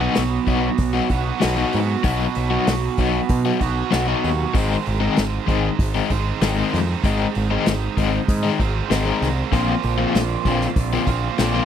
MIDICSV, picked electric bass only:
0, 0, Header, 1, 2, 480
1, 0, Start_track
1, 0, Tempo, 623053
1, 1576, Time_signature, 4, 2, 24, 8
1, 8975, End_track
2, 0, Start_track
2, 0, Title_t, "Picked electric bass"
2, 0, Program_c, 0, 34
2, 137, Note_on_c, 0, 35, 85
2, 293, Note_off_c, 0, 35, 0
2, 365, Note_on_c, 0, 35, 79
2, 525, Note_off_c, 0, 35, 0
2, 608, Note_on_c, 0, 35, 89
2, 767, Note_off_c, 0, 35, 0
2, 848, Note_on_c, 0, 35, 81
2, 1007, Note_off_c, 0, 35, 0
2, 1107, Note_on_c, 0, 35, 83
2, 1261, Note_off_c, 0, 35, 0
2, 1344, Note_on_c, 0, 44, 82
2, 1499, Note_off_c, 0, 44, 0
2, 1579, Note_on_c, 0, 35, 84
2, 1736, Note_off_c, 0, 35, 0
2, 1822, Note_on_c, 0, 35, 85
2, 1978, Note_off_c, 0, 35, 0
2, 2060, Note_on_c, 0, 35, 78
2, 2217, Note_off_c, 0, 35, 0
2, 2296, Note_on_c, 0, 35, 75
2, 2455, Note_off_c, 0, 35, 0
2, 2543, Note_on_c, 0, 47, 91
2, 2699, Note_off_c, 0, 47, 0
2, 2786, Note_on_c, 0, 35, 83
2, 2942, Note_off_c, 0, 35, 0
2, 3028, Note_on_c, 0, 35, 81
2, 3183, Note_off_c, 0, 35, 0
2, 3268, Note_on_c, 0, 39, 78
2, 3424, Note_off_c, 0, 39, 0
2, 3507, Note_on_c, 0, 32, 89
2, 3663, Note_off_c, 0, 32, 0
2, 3755, Note_on_c, 0, 32, 85
2, 3909, Note_off_c, 0, 32, 0
2, 3989, Note_on_c, 0, 32, 79
2, 4145, Note_off_c, 0, 32, 0
2, 4226, Note_on_c, 0, 32, 84
2, 4383, Note_off_c, 0, 32, 0
2, 4463, Note_on_c, 0, 32, 86
2, 4621, Note_off_c, 0, 32, 0
2, 4703, Note_on_c, 0, 32, 84
2, 4861, Note_off_c, 0, 32, 0
2, 4942, Note_on_c, 0, 32, 82
2, 5100, Note_off_c, 0, 32, 0
2, 5190, Note_on_c, 0, 41, 82
2, 5345, Note_off_c, 0, 41, 0
2, 5423, Note_on_c, 0, 32, 89
2, 5581, Note_off_c, 0, 32, 0
2, 5673, Note_on_c, 0, 32, 87
2, 5827, Note_off_c, 0, 32, 0
2, 5912, Note_on_c, 0, 32, 74
2, 6066, Note_off_c, 0, 32, 0
2, 6145, Note_on_c, 0, 32, 84
2, 6302, Note_off_c, 0, 32, 0
2, 6385, Note_on_c, 0, 44, 87
2, 6541, Note_off_c, 0, 44, 0
2, 6627, Note_on_c, 0, 32, 82
2, 6782, Note_off_c, 0, 32, 0
2, 6862, Note_on_c, 0, 32, 81
2, 7018, Note_off_c, 0, 32, 0
2, 7100, Note_on_c, 0, 36, 83
2, 7257, Note_off_c, 0, 36, 0
2, 7341, Note_on_c, 0, 34, 78
2, 7497, Note_off_c, 0, 34, 0
2, 7583, Note_on_c, 0, 34, 88
2, 7738, Note_off_c, 0, 34, 0
2, 7819, Note_on_c, 0, 34, 74
2, 7975, Note_off_c, 0, 34, 0
2, 8055, Note_on_c, 0, 34, 81
2, 8212, Note_off_c, 0, 34, 0
2, 8294, Note_on_c, 0, 34, 86
2, 8451, Note_off_c, 0, 34, 0
2, 8533, Note_on_c, 0, 34, 77
2, 8689, Note_off_c, 0, 34, 0
2, 8777, Note_on_c, 0, 34, 90
2, 8931, Note_off_c, 0, 34, 0
2, 8975, End_track
0, 0, End_of_file